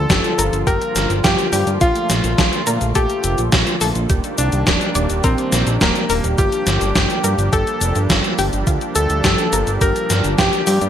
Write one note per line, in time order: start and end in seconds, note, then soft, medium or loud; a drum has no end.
0.00 4.06 D3 medium
0.00 4.06 F3 medium
0.00 1.77 G3 medium
0.00 10.89 A#3 medium
0.00 4.06 F4 medium
0.00 0.56 A4 medium
0.00 0.55 A5 medium
0.10 0.22 G1 loud
0.10 0.30 G4 medium
0.10 kick loud
0.10 snare loud
0.10 closed hi-hat medium
0.10 cabasa soft
0.24 closed hi-hat soft
0.24 cabasa soft
0.38 0.50 G1 medium
0.38 0.59 A#4 medium
0.38 closed hi-hat loud
0.38 cabasa medium
0.53 0.65 G1 medium
0.53 closed hi-hat soft
0.53 cabasa soft
0.67 0.79 G1 loud
0.67 0.87 G4 loud
0.67 1.10 A#4 medium
0.67 1.10 A#5 medium
0.67 kick loud
0.67 closed hi-hat medium
0.67 cabasa soft
0.82 closed hi-hat soft
0.82 cabasa soft
0.96 1.07 G1 medium
0.96 snare medium
0.96 closed hi-hat medium
0.96 cabasa medium
1.10 1.22 G1 medium
1.10 closed hi-hat soft
1.10 cabasa soft
1.24 1.36 G2 loud
1.24 1.36 F4 medium
1.24 1.68 G4 medium
1.24 1.67 G5 medium
1.24 kick loud
1.24 snare loud
1.24 closed hi-hat medium
1.24 cabasa soft
1.39 closed hi-hat soft
1.39 cabasa soft
1.52 1.64 G2 medium
1.52 1.80 G4 loud
1.52 open hi-hat medium
1.52 cabasa medium
1.67 1.79 G2 medium
1.67 closed hi-hat soft
1.67 cabasa soft
1.81 1.93 A#1 loud
1.81 4.08 A3 medium
1.81 2.01 F4 medium
1.81 2.84 F4 loud
1.81 2.84 F5 loud
1.81 kick loud
1.81 closed hi-hat medium
1.81 cabasa soft
1.96 closed hi-hat soft
1.96 cabasa soft
2.10 2.22 A#1 medium
2.10 snare medium
2.10 closed hi-hat medium
2.10 cabasa medium
2.24 2.36 A#1 medium
2.24 closed hi-hat soft
2.24 cabasa soft
2.38 2.50 A#1 loud
2.38 2.59 A4 medium
2.38 kick loud
2.38 snare loud
2.38 closed hi-hat medium
2.38 cabasa soft
2.53 closed hi-hat soft
2.53 cabasa soft
2.67 2.79 A#2 medium
2.67 2.87 A#4 medium
2.67 closed hi-hat loud
2.67 cabasa medium
2.81 2.93 A#1 medium
2.81 closed hi-hat soft
2.81 cabasa soft
2.95 3.07 A#1 loud
2.95 3.39 G4 medium
2.95 3.16 A4 loud
2.95 3.39 G5 medium
2.95 kick loud
2.95 closed hi-hat medium
2.95 cabasa soft
3.10 closed hi-hat soft
3.10 cabasa soft
3.24 3.36 F1 loud
3.24 closed hi-hat medium
3.24 cabasa medium
3.38 3.50 A#1 medium
3.38 closed hi-hat soft
3.38 cabasa soft
3.52 3.64 A#1 loud
3.52 3.65 F4 medium
3.52 kick loud
3.52 snare loud
3.52 closed hi-hat medium
3.52 cabasa soft
3.67 closed hi-hat soft
3.67 cabasa soft
3.81 3.93 A#1 medium
3.81 4.08 A4 loud
3.81 open hi-hat medium
3.81 cabasa medium
3.95 4.07 A#1 medium
3.95 closed hi-hat soft
3.95 cabasa soft
4.10 4.22 D#1 loud
4.10 6.36 D#3 medium
4.10 6.36 G3 medium
4.10 6.36 D4 medium
4.10 4.30 G4 medium
4.10 10.89 G4 medium
4.10 kick loud
4.10 closed hi-hat medium
4.10 cabasa soft
4.24 closed hi-hat soft
4.24 cabasa soft
4.38 4.50 C2 medium
4.38 5.13 D4 medium
4.38 5.12 D5 medium
4.38 closed hi-hat medium
4.38 cabasa medium
4.52 4.65 C2 medium
4.52 closed hi-hat soft
4.52 cabasa soft
4.67 4.79 D#1 loud
4.67 4.87 A#4 medium
4.67 kick loud
4.67 snare loud
4.67 closed hi-hat medium
4.67 cabasa soft
4.81 closed hi-hat soft
4.81 cabasa soft
4.95 5.07 D#1 medium
4.95 5.16 D5 medium
4.95 closed hi-hat medium
4.95 cabasa medium
5.10 5.22 D#1 medium
5.10 closed hi-hat soft
5.10 cabasa soft
5.24 5.36 A#1 loud
5.24 5.68 C4 medium
5.24 5.44 A#4 loud
5.24 5.67 C5 medium
5.24 kick loud
5.24 closed hi-hat medium
5.24 cabasa soft
5.38 closed hi-hat soft
5.38 cabasa soft
5.52 5.64 A#1 loud
5.52 snare medium
5.52 closed hi-hat medium
5.52 cabasa medium
5.67 5.79 A#1 medium
5.67 closed hi-hat soft
5.67 cabasa soft
5.81 5.93 D#1 loud
5.81 6.25 A#3 medium
5.81 5.93 G4 medium
5.81 6.25 A#4 medium
5.81 kick loud
5.81 snare loud
5.81 closed hi-hat medium
5.81 cabasa soft
5.96 closed hi-hat soft
5.96 cabasa soft
6.10 6.22 D#1 loud
6.10 6.37 A#4 loud
6.10 open hi-hat medium
6.10 cabasa medium
6.24 6.36 D#1 medium
6.24 closed hi-hat soft
6.24 cabasa soft
6.38 6.50 G1 loud
6.38 10.89 F3 medium
6.38 10.89 G3 medium
6.38 10.89 D4 medium
6.38 6.59 F4 medium
6.38 7.41 G4 loud
6.38 7.41 G5 medium
6.38 kick loud
6.38 closed hi-hat medium
6.38 cabasa soft
6.52 closed hi-hat soft
6.52 cabasa soft
6.67 6.79 G1 medium
6.67 snare medium
6.67 closed hi-hat medium
6.67 cabasa medium
6.81 6.93 G1 medium
6.81 closed hi-hat soft
6.81 cabasa soft
6.95 7.07 G1 loud
6.95 7.16 G4 medium
6.95 kick loud
6.95 snare loud
6.95 closed hi-hat medium
6.95 cabasa soft
7.10 closed hi-hat soft
7.10 cabasa soft
7.24 7.36 G2 loud
7.24 7.44 A#4 medium
7.24 closed hi-hat medium
7.24 cabasa medium
7.38 7.50 G1 medium
7.38 closed hi-hat soft
7.38 cabasa soft
7.52 7.64 G1 loud
7.52 7.73 G4 loud
7.52 7.96 A4 medium
7.52 7.96 A5 medium
7.52 kick loud
7.52 closed hi-hat medium
7.52 cabasa soft
7.67 closed hi-hat soft
7.67 cabasa soft
7.81 7.93 F1 loud
7.81 closed hi-hat medium
7.81 cabasa medium
7.96 8.08 G1 medium
7.96 closed hi-hat soft
7.96 cabasa soft
8.10 8.22 G1 loud
8.10 8.22 F4 medium
8.10 kick loud
8.10 snare loud
8.10 closed hi-hat medium
8.10 cabasa soft
8.24 closed hi-hat soft
8.24 cabasa soft
8.39 8.50 G1 loud
8.39 8.66 G4 loud
8.39 open hi-hat medium
8.39 cabasa medium
8.53 8.65 G1 medium
8.53 closed hi-hat soft
8.53 cabasa soft
8.67 8.79 D2 loud
8.67 8.87 F4 medium
8.67 kick loud
8.67 closed hi-hat medium
8.67 cabasa soft
8.81 closed hi-hat soft
8.81 cabasa soft
8.95 9.08 D2 medium
8.95 9.70 A4 medium
8.95 9.70 A5 medium
8.95 closed hi-hat medium
8.95 cabasa medium
9.10 9.22 D2 medium
9.10 closed hi-hat soft
9.10 cabasa soft
9.24 9.36 G1 loud
9.24 9.45 G4 medium
9.24 kick loud
9.24 snare loud
9.24 closed hi-hat medium
9.24 cabasa soft
9.38 closed hi-hat soft
9.38 cabasa soft
9.53 9.64 G1 medium
9.53 9.73 A#4 medium
9.53 closed hi-hat medium
9.53 cabasa medium
9.67 9.79 G1 medium
9.67 closed hi-hat soft
9.67 cabasa soft
9.81 9.93 G1 loud
9.81 10.02 G4 loud
9.81 10.25 A#4 medium
9.81 10.24 A#5 medium
9.81 kick loud
9.81 closed hi-hat medium
9.81 cabasa soft
9.96 closed hi-hat soft
9.96 cabasa soft
10.10 10.22 G1 medium
10.10 snare medium
10.10 closed hi-hat medium
10.10 cabasa medium
10.24 10.36 G1 medium
10.24 closed hi-hat soft
10.24 cabasa soft
10.38 10.50 G2 loud
10.38 10.51 F4 medium
10.38 10.82 G4 medium
10.38 10.82 G5 medium
10.38 kick loud
10.38 snare loud
10.38 closed hi-hat medium
10.38 cabasa soft
10.53 closed hi-hat soft
10.53 cabasa soft
10.67 10.79 G2 loud
10.67 10.89 G4 loud
10.67 open hi-hat medium
10.67 cabasa medium
10.81 10.89 G2 medium
10.81 closed hi-hat soft
10.81 cabasa soft